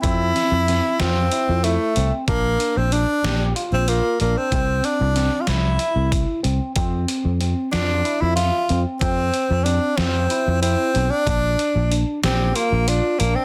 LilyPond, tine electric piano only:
\new Staff \with { instrumentName = "Tine electric piano" } { \time 7/8 \key bes \lydian \tempo 4 = 93 c'4 c'8 f'8 e'8 e'8 c'8 | d'4 d'8 g'8 f'8 f'8 d'8 | c'4 c'8 f8 e'8 e'8 c'8 | c'4 c'8 f'8 e'8 e''8 c'8 |
c'4 c'8 f'8 e'8 e'8 c'8 | d'4 d'8 g'8 f'8 f'8 d'8 | }